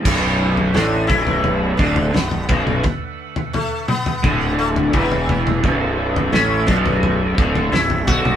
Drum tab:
CC |x---------------|----------------|----------------|
SD |----o-------o---|----------------|----o-------o---|
T2 |------o-------oo|------o-o-----oo|------o-------oo|
FT |o--oo--oo--oooo-|o--oo--oo--ooooo|o--oo--oo--oooo-|
BD |o-----o---o---o-|o-------o---o---|o-----o---o---o-|